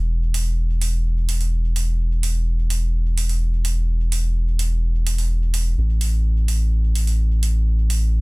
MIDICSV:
0, 0, Header, 1, 3, 480
1, 0, Start_track
1, 0, Tempo, 472441
1, 108, Time_signature, 4, 2, 24, 8
1, 8341, End_track
2, 0, Start_track
2, 0, Title_t, "Sub bass"
2, 0, Program_c, 0, 38
2, 0, Note_on_c, 0, 28, 86
2, 5844, Note_off_c, 0, 28, 0
2, 5867, Note_on_c, 0, 33, 86
2, 8341, Note_off_c, 0, 33, 0
2, 8341, End_track
3, 0, Start_track
3, 0, Title_t, "Drums"
3, 348, Note_on_c, 9, 46, 80
3, 450, Note_off_c, 9, 46, 0
3, 828, Note_on_c, 9, 46, 72
3, 929, Note_off_c, 9, 46, 0
3, 1308, Note_on_c, 9, 46, 83
3, 1409, Note_off_c, 9, 46, 0
3, 1429, Note_on_c, 9, 46, 32
3, 1530, Note_off_c, 9, 46, 0
3, 1788, Note_on_c, 9, 46, 69
3, 1890, Note_off_c, 9, 46, 0
3, 2267, Note_on_c, 9, 46, 82
3, 2369, Note_off_c, 9, 46, 0
3, 2747, Note_on_c, 9, 46, 72
3, 2848, Note_off_c, 9, 46, 0
3, 3226, Note_on_c, 9, 46, 80
3, 3328, Note_off_c, 9, 46, 0
3, 3347, Note_on_c, 9, 46, 34
3, 3448, Note_off_c, 9, 46, 0
3, 3706, Note_on_c, 9, 46, 70
3, 3808, Note_off_c, 9, 46, 0
3, 4186, Note_on_c, 9, 46, 81
3, 4288, Note_off_c, 9, 46, 0
3, 4666, Note_on_c, 9, 46, 71
3, 4768, Note_off_c, 9, 46, 0
3, 5147, Note_on_c, 9, 46, 81
3, 5248, Note_off_c, 9, 46, 0
3, 5267, Note_on_c, 9, 46, 33
3, 5369, Note_off_c, 9, 46, 0
3, 5627, Note_on_c, 9, 46, 72
3, 5728, Note_off_c, 9, 46, 0
3, 6106, Note_on_c, 9, 46, 78
3, 6208, Note_off_c, 9, 46, 0
3, 6586, Note_on_c, 9, 46, 69
3, 6688, Note_off_c, 9, 46, 0
3, 7066, Note_on_c, 9, 46, 80
3, 7167, Note_off_c, 9, 46, 0
3, 7187, Note_on_c, 9, 46, 33
3, 7288, Note_off_c, 9, 46, 0
3, 7547, Note_on_c, 9, 46, 68
3, 7648, Note_off_c, 9, 46, 0
3, 8027, Note_on_c, 9, 46, 77
3, 8128, Note_off_c, 9, 46, 0
3, 8341, End_track
0, 0, End_of_file